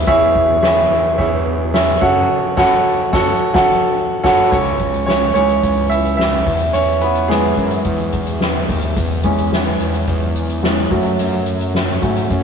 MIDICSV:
0, 0, Header, 1, 4, 480
1, 0, Start_track
1, 0, Key_signature, 4, "minor"
1, 0, Tempo, 555504
1, 67, Time_signature, 4, 2, 24, 8
1, 10742, End_track
2, 0, Start_track
2, 0, Title_t, "Grand piano"
2, 0, Program_c, 0, 0
2, 0, Control_c, 0, 64, 127
2, 62, Note_on_c, 0, 64, 117
2, 63, Note_on_c, 0, 76, 118
2, 64, Note_on_c, 0, 52, 79
2, 64, Note_on_c, 0, 68, 99
2, 64, Note_on_c, 0, 73, 110
2, 78, Control_c, 0, 64, 0
2, 239, Control_c, 0, 64, 127
2, 429, Note_off_c, 0, 64, 0
2, 429, Note_off_c, 0, 73, 0
2, 429, Note_off_c, 0, 76, 0
2, 430, Note_off_c, 0, 68, 0
2, 539, Note_on_c, 0, 68, 82
2, 541, Note_on_c, 0, 64, 89
2, 543, Note_on_c, 0, 76, 96
2, 544, Note_on_c, 0, 73, 79
2, 751, Note_off_c, 0, 52, 0
2, 907, Note_off_c, 0, 68, 0
2, 908, Note_off_c, 0, 64, 0
2, 909, Note_off_c, 0, 76, 0
2, 910, Note_off_c, 0, 73, 0
2, 1018, Note_on_c, 0, 64, 81
2, 1018, Note_on_c, 0, 73, 69
2, 1020, Note_on_c, 0, 68, 69
2, 1022, Note_on_c, 0, 76, 83
2, 1387, Note_off_c, 0, 64, 0
2, 1387, Note_off_c, 0, 73, 0
2, 1388, Note_off_c, 0, 68, 0
2, 1389, Note_off_c, 0, 76, 0
2, 1500, Note_on_c, 0, 64, 78
2, 1501, Note_on_c, 0, 68, 78
2, 1503, Note_on_c, 0, 73, 72
2, 1503, Note_on_c, 0, 76, 92
2, 1729, Note_off_c, 0, 73, 0
2, 1737, Note_on_c, 0, 66, 91
2, 1738, Note_on_c, 0, 69, 82
2, 1740, Note_on_c, 0, 49, 75
2, 1740, Note_on_c, 0, 78, 100
2, 1741, Note_on_c, 0, 73, 89
2, 1744, Note_off_c, 0, 64, 0
2, 1745, Note_off_c, 0, 68, 0
2, 1745, Note_off_c, 0, 76, 0
2, 1759, Control_c, 0, 64, 0
2, 1889, Control_c, 0, 64, 127
2, 1967, Note_off_c, 0, 49, 0
2, 1983, Note_off_c, 0, 66, 0
2, 1983, Note_off_c, 0, 69, 0
2, 1984, Note_off_c, 0, 78, 0
2, 1985, Note_off_c, 0, 73, 0
2, 2219, Note_on_c, 0, 73, 105
2, 2221, Note_on_c, 0, 66, 101
2, 2221, Note_on_c, 0, 69, 98
2, 2224, Note_on_c, 0, 78, 101
2, 2386, Note_off_c, 0, 73, 0
2, 2387, Note_off_c, 0, 66, 0
2, 2387, Note_off_c, 0, 69, 0
2, 2389, Note_off_c, 0, 78, 0
2, 2703, Note_on_c, 0, 73, 93
2, 2703, Note_on_c, 0, 78, 103
2, 2704, Note_on_c, 0, 66, 105
2, 2705, Note_on_c, 0, 69, 102
2, 2868, Note_off_c, 0, 73, 0
2, 2868, Note_off_c, 0, 78, 0
2, 2869, Note_off_c, 0, 66, 0
2, 2870, Note_off_c, 0, 69, 0
2, 3056, Note_on_c, 0, 66, 103
2, 3060, Note_on_c, 0, 73, 86
2, 3060, Note_on_c, 0, 78, 102
2, 3061, Note_on_c, 0, 69, 99
2, 3224, Note_off_c, 0, 66, 0
2, 3226, Note_off_c, 0, 73, 0
2, 3226, Note_off_c, 0, 78, 0
2, 3227, Note_off_c, 0, 69, 0
2, 3660, Note_on_c, 0, 66, 102
2, 3660, Note_on_c, 0, 69, 95
2, 3660, Note_on_c, 0, 73, 92
2, 3660, Note_on_c, 0, 78, 89
2, 3826, Note_off_c, 0, 69, 0
2, 3826, Note_off_c, 0, 73, 0
2, 3826, Note_off_c, 0, 78, 0
2, 3827, Note_off_c, 0, 66, 0
2, 3898, Note_on_c, 0, 73, 80
2, 3910, Note_on_c, 0, 61, 67
2, 3921, Control_c, 0, 64, 0
2, 4062, Control_c, 0, 64, 127
2, 4356, Note_off_c, 0, 61, 0
2, 4363, Note_off_c, 0, 73, 0
2, 4376, Note_on_c, 0, 73, 89
2, 4394, Note_on_c, 0, 61, 70
2, 4602, Note_off_c, 0, 73, 0
2, 4614, Note_off_c, 0, 61, 0
2, 4615, Note_on_c, 0, 73, 93
2, 4618, Note_on_c, 0, 52, 53
2, 4623, Note_on_c, 0, 56, 48
2, 4629, Note_on_c, 0, 61, 66
2, 5067, Note_off_c, 0, 73, 0
2, 5094, Note_on_c, 0, 76, 101
2, 5112, Note_on_c, 0, 64, 72
2, 5308, Note_off_c, 0, 52, 0
2, 5311, Note_off_c, 0, 56, 0
2, 5315, Note_off_c, 0, 61, 0
2, 5319, Note_off_c, 0, 76, 0
2, 5332, Note_on_c, 0, 76, 90
2, 5333, Note_off_c, 0, 64, 0
2, 5349, Note_on_c, 0, 64, 68
2, 5600, Control_c, 0, 64, 0
2, 5753, Control_c, 0, 64, 127
2, 5795, Note_off_c, 0, 64, 0
2, 5818, Note_on_c, 0, 73, 91
2, 5835, Note_off_c, 0, 76, 0
2, 5837, Note_on_c, 0, 61, 65
2, 6056, Note_off_c, 0, 61, 0
2, 6060, Note_on_c, 0, 71, 83
2, 6070, Note_off_c, 0, 73, 0
2, 6076, Note_on_c, 0, 59, 66
2, 6292, Note_on_c, 0, 68, 72
2, 6295, Note_off_c, 0, 59, 0
2, 6302, Note_on_c, 0, 52, 51
2, 6304, Note_on_c, 0, 56, 58
2, 6311, Note_off_c, 0, 71, 0
2, 6314, Note_on_c, 0, 59, 59
2, 6746, Note_off_c, 0, 68, 0
2, 6758, Note_off_c, 0, 56, 0
2, 7711, Note_off_c, 0, 52, 0
2, 7717, Note_off_c, 0, 59, 0
2, 7759, Control_c, 0, 64, 0
2, 7933, Control_c, 0, 64, 127
2, 7982, Note_on_c, 0, 52, 54
2, 7987, Note_on_c, 0, 56, 50
2, 7994, Note_on_c, 0, 61, 61
2, 8305, Note_off_c, 0, 52, 0
2, 8307, Note_off_c, 0, 56, 0
2, 8311, Note_off_c, 0, 61, 0
2, 9183, Note_on_c, 0, 52, 46
2, 9186, Note_on_c, 0, 56, 37
2, 9191, Note_on_c, 0, 61, 50
2, 9402, Note_off_c, 0, 52, 0
2, 9404, Note_off_c, 0, 56, 0
2, 9406, Note_off_c, 0, 61, 0
2, 9422, Note_on_c, 0, 54, 55
2, 9431, Note_on_c, 0, 57, 50
2, 9436, Note_on_c, 0, 61, 57
2, 9441, Control_c, 0, 64, 0
2, 9583, Control_c, 0, 64, 127
2, 10367, Note_off_c, 0, 54, 0
2, 10371, Note_off_c, 0, 57, 0
2, 10374, Note_off_c, 0, 61, 0
2, 10380, Note_on_c, 0, 54, 43
2, 10384, Note_on_c, 0, 57, 43
2, 10387, Note_on_c, 0, 61, 53
2, 10600, Note_off_c, 0, 54, 0
2, 10602, Note_off_c, 0, 57, 0
2, 10604, Note_off_c, 0, 61, 0
2, 10742, End_track
3, 0, Start_track
3, 0, Title_t, "Analog synth bass"
3, 0, Program_c, 1, 38
3, 64, Note_on_c, 1, 40, 102
3, 751, Note_off_c, 1, 40, 0
3, 781, Note_on_c, 1, 40, 98
3, 1008, Note_off_c, 1, 40, 0
3, 1025, Note_on_c, 1, 40, 114
3, 1712, Note_off_c, 1, 40, 0
3, 1743, Note_on_c, 1, 42, 100
3, 1969, Note_off_c, 1, 42, 0
3, 2225, Note_on_c, 1, 30, 99
3, 2390, Note_off_c, 1, 30, 0
3, 2704, Note_on_c, 1, 30, 108
3, 2869, Note_off_c, 1, 30, 0
3, 3066, Note_on_c, 1, 30, 101
3, 3230, Note_off_c, 1, 30, 0
3, 3667, Note_on_c, 1, 30, 97
3, 3831, Note_off_c, 1, 30, 0
3, 3906, Note_on_c, 1, 37, 84
3, 4592, Note_off_c, 1, 37, 0
3, 4626, Note_on_c, 1, 37, 99
3, 4850, Note_off_c, 1, 37, 0
3, 4871, Note_on_c, 1, 37, 93
3, 5555, Note_off_c, 1, 37, 0
3, 5588, Note_on_c, 1, 40, 88
3, 5811, Note_off_c, 1, 40, 0
3, 5827, Note_on_c, 1, 40, 100
3, 6513, Note_off_c, 1, 40, 0
3, 6542, Note_on_c, 1, 42, 85
3, 6768, Note_off_c, 1, 42, 0
3, 6788, Note_on_c, 1, 40, 103
3, 7474, Note_off_c, 1, 40, 0
3, 7510, Note_on_c, 1, 39, 83
3, 7732, Note_off_c, 1, 39, 0
3, 7745, Note_on_c, 1, 40, 97
3, 8432, Note_off_c, 1, 40, 0
3, 8469, Note_on_c, 1, 40, 91
3, 8692, Note_off_c, 1, 40, 0
3, 8708, Note_on_c, 1, 40, 109
3, 9394, Note_off_c, 1, 40, 0
3, 9429, Note_on_c, 1, 42, 82
3, 9652, Note_off_c, 1, 42, 0
3, 9674, Note_on_c, 1, 42, 97
3, 10357, Note_off_c, 1, 42, 0
3, 10386, Note_on_c, 1, 44, 87
3, 10611, Note_off_c, 1, 44, 0
3, 10633, Note_on_c, 1, 42, 97
3, 10742, Note_off_c, 1, 42, 0
3, 10742, End_track
4, 0, Start_track
4, 0, Title_t, "Drums"
4, 64, Note_on_c, 9, 36, 112
4, 65, Note_on_c, 9, 44, 58
4, 65, Note_on_c, 9, 51, 72
4, 151, Note_off_c, 9, 36, 0
4, 151, Note_off_c, 9, 44, 0
4, 152, Note_off_c, 9, 51, 0
4, 187, Note_on_c, 9, 51, 34
4, 274, Note_off_c, 9, 51, 0
4, 300, Note_on_c, 9, 51, 53
4, 304, Note_on_c, 9, 36, 85
4, 386, Note_off_c, 9, 51, 0
4, 390, Note_off_c, 9, 36, 0
4, 422, Note_on_c, 9, 51, 45
4, 509, Note_off_c, 9, 51, 0
4, 544, Note_on_c, 9, 38, 108
4, 545, Note_on_c, 9, 51, 81
4, 631, Note_off_c, 9, 38, 0
4, 631, Note_off_c, 9, 51, 0
4, 783, Note_on_c, 9, 51, 58
4, 869, Note_off_c, 9, 51, 0
4, 902, Note_on_c, 9, 51, 41
4, 988, Note_off_c, 9, 51, 0
4, 1023, Note_on_c, 9, 51, 67
4, 1025, Note_on_c, 9, 36, 89
4, 1109, Note_off_c, 9, 51, 0
4, 1112, Note_off_c, 9, 36, 0
4, 1261, Note_on_c, 9, 51, 57
4, 1347, Note_off_c, 9, 51, 0
4, 1386, Note_on_c, 9, 51, 42
4, 1472, Note_off_c, 9, 51, 0
4, 1504, Note_on_c, 9, 38, 114
4, 1504, Note_on_c, 9, 51, 78
4, 1590, Note_off_c, 9, 38, 0
4, 1590, Note_off_c, 9, 51, 0
4, 1744, Note_on_c, 9, 36, 94
4, 1744, Note_on_c, 9, 49, 62
4, 1831, Note_off_c, 9, 36, 0
4, 1831, Note_off_c, 9, 49, 0
4, 1860, Note_on_c, 9, 51, 46
4, 1947, Note_off_c, 9, 51, 0
4, 2225, Note_on_c, 9, 36, 96
4, 2226, Note_on_c, 9, 38, 95
4, 2226, Note_on_c, 9, 57, 77
4, 2312, Note_off_c, 9, 36, 0
4, 2312, Note_off_c, 9, 38, 0
4, 2312, Note_off_c, 9, 57, 0
4, 2705, Note_on_c, 9, 38, 91
4, 2706, Note_on_c, 9, 36, 107
4, 2792, Note_off_c, 9, 36, 0
4, 2792, Note_off_c, 9, 38, 0
4, 3064, Note_on_c, 9, 38, 106
4, 3066, Note_on_c, 9, 36, 109
4, 3150, Note_off_c, 9, 38, 0
4, 3152, Note_off_c, 9, 36, 0
4, 3666, Note_on_c, 9, 36, 99
4, 3666, Note_on_c, 9, 38, 95
4, 3666, Note_on_c, 9, 57, 74
4, 3753, Note_off_c, 9, 36, 0
4, 3753, Note_off_c, 9, 38, 0
4, 3753, Note_off_c, 9, 57, 0
4, 3907, Note_on_c, 9, 36, 100
4, 3910, Note_on_c, 9, 42, 84
4, 3993, Note_off_c, 9, 36, 0
4, 3996, Note_off_c, 9, 42, 0
4, 4030, Note_on_c, 9, 42, 31
4, 4116, Note_off_c, 9, 42, 0
4, 4142, Note_on_c, 9, 42, 54
4, 4147, Note_on_c, 9, 36, 76
4, 4228, Note_off_c, 9, 42, 0
4, 4234, Note_off_c, 9, 36, 0
4, 4267, Note_on_c, 9, 42, 53
4, 4354, Note_off_c, 9, 42, 0
4, 4392, Note_on_c, 9, 38, 101
4, 4478, Note_off_c, 9, 38, 0
4, 4626, Note_on_c, 9, 42, 60
4, 4713, Note_off_c, 9, 42, 0
4, 4746, Note_on_c, 9, 42, 46
4, 4832, Note_off_c, 9, 42, 0
4, 4867, Note_on_c, 9, 42, 73
4, 4868, Note_on_c, 9, 36, 74
4, 4953, Note_off_c, 9, 42, 0
4, 4955, Note_off_c, 9, 36, 0
4, 4991, Note_on_c, 9, 42, 31
4, 5077, Note_off_c, 9, 42, 0
4, 5109, Note_on_c, 9, 42, 65
4, 5195, Note_off_c, 9, 42, 0
4, 5232, Note_on_c, 9, 42, 48
4, 5318, Note_off_c, 9, 42, 0
4, 5351, Note_on_c, 9, 38, 103
4, 5438, Note_off_c, 9, 38, 0
4, 5584, Note_on_c, 9, 46, 66
4, 5587, Note_on_c, 9, 36, 85
4, 5670, Note_off_c, 9, 46, 0
4, 5673, Note_off_c, 9, 36, 0
4, 5703, Note_on_c, 9, 42, 44
4, 5790, Note_off_c, 9, 42, 0
4, 5824, Note_on_c, 9, 42, 88
4, 5910, Note_off_c, 9, 42, 0
4, 5946, Note_on_c, 9, 42, 31
4, 6032, Note_off_c, 9, 42, 0
4, 6061, Note_on_c, 9, 42, 61
4, 6147, Note_off_c, 9, 42, 0
4, 6181, Note_on_c, 9, 42, 53
4, 6267, Note_off_c, 9, 42, 0
4, 6304, Note_on_c, 9, 38, 93
4, 6390, Note_off_c, 9, 38, 0
4, 6542, Note_on_c, 9, 42, 63
4, 6544, Note_on_c, 9, 36, 73
4, 6628, Note_off_c, 9, 42, 0
4, 6631, Note_off_c, 9, 36, 0
4, 6660, Note_on_c, 9, 42, 49
4, 6746, Note_off_c, 9, 42, 0
4, 6781, Note_on_c, 9, 42, 64
4, 6786, Note_on_c, 9, 36, 79
4, 6867, Note_off_c, 9, 42, 0
4, 6872, Note_off_c, 9, 36, 0
4, 6903, Note_on_c, 9, 42, 29
4, 6989, Note_off_c, 9, 42, 0
4, 7021, Note_on_c, 9, 42, 59
4, 7027, Note_on_c, 9, 36, 75
4, 7108, Note_off_c, 9, 42, 0
4, 7113, Note_off_c, 9, 36, 0
4, 7142, Note_on_c, 9, 42, 47
4, 7228, Note_off_c, 9, 42, 0
4, 7264, Note_on_c, 9, 38, 102
4, 7350, Note_off_c, 9, 38, 0
4, 7505, Note_on_c, 9, 46, 64
4, 7507, Note_on_c, 9, 36, 72
4, 7591, Note_off_c, 9, 46, 0
4, 7594, Note_off_c, 9, 36, 0
4, 7625, Note_on_c, 9, 42, 48
4, 7711, Note_off_c, 9, 42, 0
4, 7746, Note_on_c, 9, 36, 100
4, 7749, Note_on_c, 9, 42, 85
4, 7833, Note_off_c, 9, 36, 0
4, 7836, Note_off_c, 9, 42, 0
4, 7980, Note_on_c, 9, 42, 59
4, 7986, Note_on_c, 9, 36, 76
4, 8066, Note_off_c, 9, 42, 0
4, 8072, Note_off_c, 9, 36, 0
4, 8107, Note_on_c, 9, 42, 52
4, 8193, Note_off_c, 9, 42, 0
4, 8230, Note_on_c, 9, 38, 105
4, 8317, Note_off_c, 9, 38, 0
4, 8463, Note_on_c, 9, 42, 68
4, 8550, Note_off_c, 9, 42, 0
4, 8586, Note_on_c, 9, 42, 50
4, 8673, Note_off_c, 9, 42, 0
4, 8708, Note_on_c, 9, 36, 72
4, 8708, Note_on_c, 9, 42, 78
4, 8794, Note_off_c, 9, 42, 0
4, 8795, Note_off_c, 9, 36, 0
4, 8948, Note_on_c, 9, 42, 58
4, 9034, Note_off_c, 9, 42, 0
4, 9068, Note_on_c, 9, 42, 47
4, 9155, Note_off_c, 9, 42, 0
4, 9190, Note_on_c, 9, 38, 111
4, 9276, Note_off_c, 9, 38, 0
4, 9427, Note_on_c, 9, 46, 66
4, 9428, Note_on_c, 9, 36, 85
4, 9514, Note_off_c, 9, 46, 0
4, 9515, Note_off_c, 9, 36, 0
4, 9547, Note_on_c, 9, 42, 44
4, 9633, Note_off_c, 9, 42, 0
4, 9668, Note_on_c, 9, 42, 75
4, 9754, Note_off_c, 9, 42, 0
4, 9903, Note_on_c, 9, 42, 58
4, 9989, Note_off_c, 9, 42, 0
4, 10028, Note_on_c, 9, 42, 51
4, 10114, Note_off_c, 9, 42, 0
4, 10150, Note_on_c, 9, 38, 99
4, 10237, Note_off_c, 9, 38, 0
4, 10389, Note_on_c, 9, 36, 79
4, 10391, Note_on_c, 9, 42, 65
4, 10475, Note_off_c, 9, 36, 0
4, 10477, Note_off_c, 9, 42, 0
4, 10510, Note_on_c, 9, 42, 48
4, 10596, Note_off_c, 9, 42, 0
4, 10631, Note_on_c, 9, 42, 67
4, 10632, Note_on_c, 9, 36, 80
4, 10717, Note_off_c, 9, 42, 0
4, 10718, Note_off_c, 9, 36, 0
4, 10742, End_track
0, 0, End_of_file